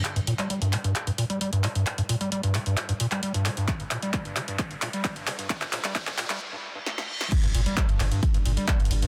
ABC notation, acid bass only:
X:1
M:4/4
L:1/16
Q:1/4=132
K:Gm
V:1 name="Acid bass" clef=bass
z G,, B,, G, G, G,, C, G,, z G,, B,, G, G, G,, C, G,, | z G,, B,, G, G, G,, C, G,, z G,, B,, G, G, G,, C, G,, | z G,, B,, G, G, G,, C, G,, z G,, B,, G, z G,, C, G,, | z G,, B,, G, z G,, B,, G, z G,, z G,, z G,, z G,, |
z G,, B,, G, z G,, C, G,, z G,, B,, G, z G,, C, G,, |]